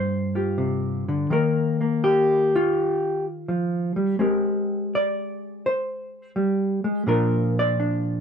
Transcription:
0.00 1.29 G2 medium
0.00 1.31 A#3 medium
0.00 0.34 F4 soft
0.00 0.35 G4 soft
0.00 1.31 C5 medium
0.35 1.27 F4 soft
0.35 1.32 G4 soft
0.58 1.07 C3 medium
1.08 1.30 D3 medium
1.30 4.16 D#3 medium
1.30 1.80 A#3 medium
1.30 2.75 A#4 medium
1.81 2.55 A#3 soft
2.04 3.25 G4 loud
2.56 4.20 F4 medium
3.48 3.96 F3 medium
3.96 4.18 G3 medium
4.19 6.83 G#3 medium
4.19 6.35 C4 soft
4.19 7.05 G4 soft
4.19 5.66 A#4 soft
4.95 6.37 D5 loud
5.66 7.08 C5 loud
6.36 6.84 G3 medium
6.84 7.06 G#3 medium
7.07 8.21 A#2 medium
7.07 8.21 F3 soft
7.07 7.78 D4 medium
7.07 8.21 F4 medium
7.07 7.57 A#4 medium
7.59 8.21 D5 loud
7.80 8.21 D4 medium

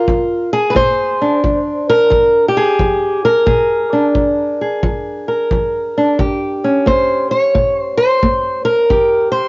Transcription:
0.00 0.53 F4 soft
0.00 0.70 A#4 medium
0.08 0.72 F3 medium
0.08 kick medium
0.53 1.39 G#4 medium
0.70 0.75 B4 medium
0.75 1.39 A#2 medium
0.75 1.89 C5 loud
0.75 kick medium
1.22 3.45 D4 soft
1.44 2.07 F3 medium
1.44 kick medium
1.89 2.48 A#4 loud
2.10 2.74 F3 medium
2.10 kick medium
2.48 3.25 G4 medium
2.57 3.45 G#4 medium
2.79 3.43 F3 medium
2.79 kick medium
3.25 5.27 A#4 medium
3.46 4.10 A#2 medium
3.46 4.60 G#4 soft
3.46 kick medium
3.93 5.96 D4 soft
4.15 4.78 F3 medium
4.15 kick medium
4.61 6.16 G#4 soft
4.83 5.46 F3 medium
4.83 kick medium
5.28 6.87 A#4 soft
5.51 6.15 F3 medium
5.51 kick medium
5.98 6.17 D4 soft
6.19 6.82 D#3 medium
6.19 8.88 G4 soft
6.19 kick medium
6.64 8.87 C#4 soft
6.86 7.49 A#3 medium
6.86 7.31 C5 medium
6.86 kick medium
7.31 7.79 C#5 medium
7.55 8.18 A#2 medium
7.55 kick medium
7.79 7.97 C5 medium
7.97 8.64 C5 medium
8.23 8.86 A#3 medium
8.23 kick medium
8.65 9.31 A#4 medium
8.90 9.48 D#3 medium
8.90 9.48 G4 soft
8.90 kick medium
9.32 9.48 C5 medium

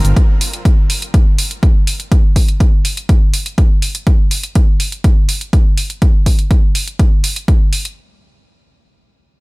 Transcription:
0.00 0.13 D3 medium
0.00 0.13 C4 medium
0.00 0.13 F4 medium
0.00 0.13 A#4 medium
0.05 0.13 G1 medium
0.05 closed hi-hat medium
0.05 shaker soft
0.17 kick loud
0.17 closed hi-hat soft
0.41 open hi-hat loud
0.53 closed hi-hat medium
0.65 kick loud
0.65 closed hi-hat soft
0.90 open hi-hat loud
1.02 closed hi-hat medium
1.14 kick loud
1.14 closed hi-hat soft
1.38 open hi-hat loud
1.51 closed hi-hat medium
1.63 kick loud
1.63 closed hi-hat soft
1.87 open hi-hat loud
2.00 closed hi-hat medium
2.12 kick loud
2.12 closed hi-hat soft
2.36 kick medium
2.36 open hi-hat medium
2.48 closed hi-hat medium
2.60 kick loud
2.60 closed hi-hat soft
2.85 open hi-hat loud
2.97 closed hi-hat medium
3.09 kick loud
3.09 closed hi-hat soft
3.34 open hi-hat loud
3.46 closed hi-hat medium
3.58 kick loud
3.58 closed hi-hat soft
3.82 open hi-hat medium
3.95 closed hi-hat medium
4.07 kick loud
4.07 closed hi-hat medium
4.31 open hi-hat medium
4.43 closed hi-hat medium
4.55 kick loud
4.55 closed hi-hat medium
4.80 open hi-hat medium
4.92 closed hi-hat medium
5.04 kick loud
5.04 closed hi-hat soft
5.29 open hi-hat medium
5.41 closed hi-hat medium
5.53 kick loud
5.53 closed hi-hat medium
5.78 open hi-hat medium
5.90 closed hi-hat medium
6.02 kick loud
6.02 closed hi-hat medium
6.26 kick medium
6.26 open hi-hat loud
6.39 closed hi-hat medium
6.51 kick loud
6.51 closed hi-hat medium
6.75 open hi-hat medium
6.88 closed hi-hat medium
6.99 kick loud
6.99 closed hi-hat soft
7.24 open hi-hat medium
7.36 closed hi-hat medium
7.48 kick loud
7.48 closed hi-hat medium
7.73 open hi-hat medium
7.85 closed hi-hat medium

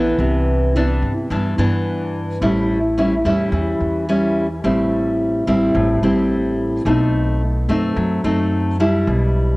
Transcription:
0.00 0.15 A1 medium
0.00 0.17 A2 soft
0.00 0.75 E3 medium
0.00 0.75 B3 medium
0.00 0.75 D4 medium
0.19 0.98 C2 medium
0.19 1.28 C3 medium
0.76 1.11 E3 medium
0.76 1.11 B3 soft
0.76 1.11 D4 medium
1.02 1.28 G2 medium
1.30 1.56 G2 medium
1.30 2.39 G2 medium
1.30 1.54 E3 soft
1.30 1.54 B3 medium
1.30 1.54 D4 soft
1.58 2.37 G2 medium
1.58 2.37 E3 medium
1.58 2.37 B3 medium
1.58 2.37 D4 medium
2.42 3.21 A1 medium
2.42 3.50 A2 soft
2.42 2.78 G3 medium
2.42 2.78 C#4 soft
2.42 2.78 E4 medium
2.98 3.14 G3 medium
2.98 3.14 C#4 medium
2.98 3.14 E4 medium
3.25 3.51 E2 medium
3.25 4.04 G3 medium
3.25 4.04 C#4 medium
3.25 4.04 E4 medium
3.52 3.78 E2 medium
3.52 4.61 E3 soft
3.80 4.60 E2 medium
4.09 4.46 G3 medium
4.09 4.46 C#4 soft
4.09 4.46 E4 medium
4.64 5.43 A1 medium
4.64 5.72 A2 soft
4.64 5.43 G3 soft
4.64 5.43 C4 soft
4.64 5.43 E4 soft
5.47 5.73 A1 medium
5.47 5.98 G3 medium
5.47 5.98 C4 medium
5.47 5.99 E4 medium
5.75 6.01 A1 medium
5.75 6.83 A2 soft
6.03 6.82 A1 medium
6.03 6.82 G3 medium
6.03 6.82 C4 medium
6.03 6.82 E4 medium
6.85 7.65 B1 medium
6.85 7.94 B2 soft
6.85 7.41 A3 soft
6.85 7.41 C4 soft
6.85 7.41 D#4 medium
7.69 7.95 F#2 medium
7.69 8.20 A3 medium
7.69 8.20 C4 medium
7.69 8.21 D#4 medium
7.96 8.22 F#2 medium
7.96 9.05 F#3 soft
8.24 9.03 F#2 medium
8.24 8.76 A3 medium
8.24 8.76 C4 medium
8.24 8.76 D#4 medium
8.80 9.57 G3 medium
8.80 9.57 D4 medium
8.80 9.57 E4 medium
9.07 9.57 B1 medium
9.07 9.57 B2 medium

